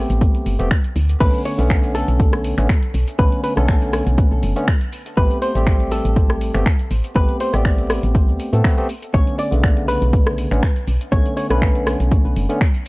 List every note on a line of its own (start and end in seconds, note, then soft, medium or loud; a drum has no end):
0.00 0.56 A3 medium
0.00 0.56 B3 medium
0.00 0.56 C4 medium
0.00 0.57 G4 medium
0.00 0.67 B4 medium
0.10 0.29 A1 medium
0.10 closed hi-hat medium
0.10 cabasa soft
0.21 kick loud
0.21 closed hi-hat medium
0.21 cabasa soft
0.35 closed hi-hat soft
0.35 cabasa soft
0.46 0.56 G1 medium
0.46 open hi-hat loud
0.46 cabasa medium
0.59 0.68 E1 medium
0.59 0.68 A3 medium
0.59 0.69 B3 medium
0.59 0.69 C4 medium
0.59 0.69 G4 medium
0.59 closed hi-hat medium
0.59 cabasa soft
0.71 finger snap loud
0.71 kick loud
0.71 closed hi-hat medium
0.71 cabasa soft
0.84 closed hi-hat soft
0.84 cabasa soft
0.96 1.15 D2 loud
0.96 open hi-hat loud
0.96 cabasa medium
1.09 closed hi-hat medium
1.09 cabasa soft
1.20 1.31 B1 loud
1.20 1.55 D3 medium
1.20 1.55 A3 medium
1.20 1.56 B3 medium
1.20 1.56 C#4 medium
1.20 1.45 B4 loud
1.20 kick loud
1.20 closed hi-hat medium
1.20 crash medium
1.20 cabasa soft
1.34 closed hi-hat soft
1.34 cabasa soft
1.45 1.94 C#5 loud
1.45 open hi-hat loud
1.45 cabasa medium
1.58 2.03 B1 medium
1.58 2.54 D3 medium
1.58 2.54 A3 medium
1.58 2.55 B3 medium
1.58 2.55 C#4 medium
1.58 closed hi-hat medium
1.58 cabasa soft
1.70 finger snap loud
1.70 kick loud
1.70 closed hi-hat medium
1.70 cabasa soft
1.83 closed hi-hat soft
1.83 cabasa soft
1.95 3.18 A4 loud
1.95 open hi-hat loud
1.95 cabasa medium
2.08 2.53 B1 medium
2.08 closed hi-hat medium
2.08 cabasa soft
2.20 kick loud
2.20 closed hi-hat medium
2.20 cabasa soft
2.33 cross-stick medium
2.33 cabasa soft
2.44 open hi-hat loud
2.44 cabasa medium
2.57 2.67 A1 medium
2.57 2.67 D3 medium
2.57 2.67 A3 medium
2.57 2.67 B3 medium
2.57 2.67 C#4 loud
2.57 finger snap soft
2.57 closed hi-hat medium
2.57 cabasa soft
2.69 finger snap loud
2.69 kick loud
2.69 closed hi-hat medium
2.69 cabasa soft
2.83 closed hi-hat soft
2.83 cabasa soft
2.94 3.04 B1 medium
2.94 open hi-hat loud
2.94 cabasa medium
3.08 closed hi-hat medium
3.08 cabasa soft
3.18 3.29 B1 loud
3.18 3.54 D3 medium
3.18 3.54 A3 medium
3.18 3.54 B3 medium
3.18 3.54 C#4 medium
3.18 3.42 B4 loud
3.18 kick loud
3.18 closed hi-hat medium
3.18 cabasa soft
3.32 closed hi-hat soft
3.32 cabasa soft
3.44 3.56 B4 medium
3.44 open hi-hat loud
3.44 cabasa medium
3.56 4.02 B1 medium
3.56 4.52 D3 medium
3.56 4.53 A3 medium
3.56 4.53 B3 medium
3.56 4.54 C#4 medium
3.56 4.03 A4 medium
3.56 cross-stick medium
3.56 closed hi-hat medium
3.56 cabasa soft
3.68 finger snap loud
3.68 kick loud
3.68 closed hi-hat medium
3.68 cabasa soft
3.82 closed hi-hat soft
3.82 cabasa soft
3.93 cross-stick medium
3.93 open hi-hat loud
3.93 cabasa medium
4.07 4.25 B1 medium
4.07 closed hi-hat medium
4.07 cabasa soft
4.18 kick loud
4.18 closed hi-hat medium
4.18 cabasa soft
4.31 4.40 B1 loud
4.31 cabasa soft
4.43 4.53 F#1 loud
4.43 open hi-hat loud
4.43 cabasa medium
4.56 4.65 D3 medium
4.56 4.65 A3 medium
4.56 4.65 B3 medium
4.56 4.66 C#4 loud
4.56 closed hi-hat medium
4.56 cabasa soft
4.68 finger snap loud
4.68 kick loud
4.68 closed hi-hat medium
4.68 cabasa soft
4.81 closed hi-hat soft
4.81 cabasa soft
4.92 open hi-hat loud
4.92 cabasa medium
5.06 closed hi-hat medium
5.06 cabasa soft
5.17 5.28 A1 loud
5.17 5.52 A3 medium
5.17 5.52 B3 medium
5.17 5.52 C4 medium
5.17 5.52 G4 medium
5.17 5.42 B4 loud
5.17 kick loud
5.17 closed hi-hat medium
5.17 cabasa soft
5.31 closed hi-hat soft
5.31 cabasa soft
5.42 5.93 C5 loud
5.42 open hi-hat loud
5.42 cabasa medium
5.54 6.00 A1 medium
5.54 6.51 G3 medium
5.54 6.51 A3 medium
5.54 6.52 C4 medium
5.54 6.52 G4 loud
5.54 closed hi-hat medium
5.54 cabasa soft
5.67 finger snap loud
5.67 kick loud
5.67 closed hi-hat medium
5.67 cabasa soft
5.80 closed hi-hat soft
5.80 cabasa soft
5.92 7.19 A4 loud
5.92 open hi-hat loud
5.92 cabasa medium
6.05 6.50 A1 medium
6.05 closed hi-hat medium
6.05 cabasa soft
6.16 kick loud
6.16 closed hi-hat medium
6.16 cabasa soft
6.30 cross-stick medium
6.30 cabasa soft
6.41 open hi-hat loud
6.41 cabasa medium
6.54 6.63 G1 medium
6.54 6.63 A3 medium
6.54 6.64 B3 medium
6.54 6.64 C4 medium
6.54 6.64 G4 medium
6.54 finger snap soft
6.54 closed hi-hat medium
6.54 cabasa soft
6.66 finger snap loud
6.66 kick loud
6.66 closed hi-hat medium
6.66 cabasa soft
6.79 closed hi-hat soft
6.79 cabasa soft
6.91 7.01 A1 medium
6.91 open hi-hat loud
6.91 cabasa medium
7.04 closed hi-hat medium
7.04 cabasa soft
7.15 7.26 A1 medium
7.15 7.50 A3 medium
7.15 7.50 B3 medium
7.15 7.51 C4 medium
7.15 7.51 G4 medium
7.15 7.39 B4 loud
7.15 kick loud
7.15 closed hi-hat medium
7.15 cabasa soft
7.29 closed hi-hat soft
7.29 cabasa soft
7.40 7.54 C5 loud
7.40 open hi-hat loud
7.40 cabasa medium
7.53 7.98 A1 medium
7.53 8.49 A3 medium
7.53 8.49 B3 medium
7.53 8.50 C4 medium
7.53 8.50 G4 medium
7.53 8.03 D5 loud
7.53 cross-stick medium
7.53 closed hi-hat soft
7.53 cabasa soft
7.65 finger snap loud
7.65 kick loud
7.65 closed hi-hat medium
7.65 cabasa soft
7.78 closed hi-hat soft
7.78 cabasa soft
7.90 cross-stick medium
7.90 open hi-hat loud
7.90 cabasa medium
8.03 8.30 A1 medium
8.03 closed hi-hat medium
8.03 cabasa soft
8.15 kick loud
8.15 closed hi-hat medium
8.15 cabasa soft
8.28 8.37 D2 medium
8.28 cabasa soft
8.40 open hi-hat loud
8.40 cabasa medium
8.52 8.62 A2 medium
8.52 8.62 A3 medium
8.52 8.62 B3 medium
8.52 8.62 C4 medium
8.52 8.62 A4 loud
8.52 closed hi-hat medium
8.52 cabasa soft
8.64 8.75 A3 medium
8.64 8.75 B3 medium
8.64 8.75 C4 medium
8.64 8.75 B4 medium
8.64 finger snap loud
8.64 kick loud
8.64 closed hi-hat medium
8.64 cabasa soft
8.77 8.87 A3 medium
8.77 8.87 B3 medium
8.77 8.87 C4 medium
8.77 8.87 G4 loud
8.77 closed hi-hat soft
8.77 cabasa soft
8.89 open hi-hat loud
8.89 cabasa medium
9.02 closed hi-hat medium
9.02 cabasa soft
9.13 9.24 B1 loud
9.13 9.49 D3 medium
9.13 9.49 A3 medium
9.13 9.49 B3 medium
9.13 9.49 C#4 medium
9.13 9.38 C#5 loud
9.13 kick loud
9.13 closed hi-hat medium
9.13 cabasa soft
9.27 closed hi-hat soft
9.27 cabasa soft
9.39 9.85 D5 loud
9.39 open hi-hat loud
9.39 cabasa medium
9.51 9.97 B1 medium
9.51 10.49 C#3 medium
9.51 10.47 D3 medium
9.51 10.48 A3 medium
9.51 10.48 B3 medium
9.51 closed hi-hat medium
9.51 cabasa soft
9.64 finger snap loud
9.64 kick loud
9.64 closed hi-hat medium
9.64 cabasa soft
9.77 closed hi-hat soft
9.77 cabasa soft
9.88 11.12 B4 loud
9.88 open hi-hat loud
9.88 cabasa medium
10.02 10.46 B1 medium
10.02 closed hi-hat medium
10.02 cabasa soft
10.13 kick loud
10.13 closed hi-hat medium
10.13 cabasa soft
10.27 cross-stick medium
10.27 cabasa soft
10.38 open hi-hat loud
10.38 cabasa medium
10.51 10.60 A1 medium
10.51 10.60 D3 medium
10.51 10.60 A3 medium
10.51 10.60 B3 medium
10.51 10.61 C#4 loud
10.51 finger snap soft
10.51 closed hi-hat medium
10.51 cabasa soft
10.63 finger snap loud
10.63 kick loud
10.63 closed hi-hat medium
10.63 cabasa soft
10.76 closed hi-hat soft
10.76 cabasa soft
10.88 10.98 B1 medium
10.88 open hi-hat loud
10.88 cabasa medium
11.01 closed hi-hat medium
11.01 cabasa soft
11.12 11.23 B1 loud
11.12 11.47 D3 medium
11.12 11.47 A3 medium
11.12 11.47 B3 medium
11.12 11.47 C#4 medium
11.12 11.36 C#5 loud
11.12 kick loud
11.12 closed hi-hat medium
11.12 cabasa soft
11.26 closed hi-hat soft
11.26 cabasa soft
11.37 11.50 C#5 loud
11.37 open hi-hat loud
11.37 cabasa medium
11.49 11.95 B1 medium
11.49 12.46 D3 medium
11.49 12.46 A3 medium
11.49 12.47 B3 medium
11.49 12.47 C#4 medium
11.49 11.96 B4 medium
11.49 cross-stick medium
11.49 closed hi-hat medium
11.49 cabasa soft
11.62 finger snap loud
11.62 kick loud
11.62 closed hi-hat medium
11.62 cabasa soft
11.75 closed hi-hat soft
11.75 cabasa soft
11.87 cross-stick medium
11.87 open hi-hat loud
11.87 cabasa medium
12.00 12.19 B1 medium
12.00 closed hi-hat medium
12.00 cabasa soft
12.11 kick loud
12.11 closed hi-hat medium
12.11 cabasa soft
12.25 12.34 B1 medium
12.25 cabasa soft
12.36 12.47 F#1 loud
12.36 open hi-hat loud
12.36 cabasa medium
12.49 12.58 D3 medium
12.49 12.59 A3 medium
12.49 12.59 B3 medium
12.49 12.59 C#4 medium
12.49 closed hi-hat medium
12.49 cabasa soft
12.61 finger snap loud
12.61 kick loud
12.61 closed hi-hat medium
12.61 cabasa soft
12.74 closed hi-hat soft
12.74 cabasa soft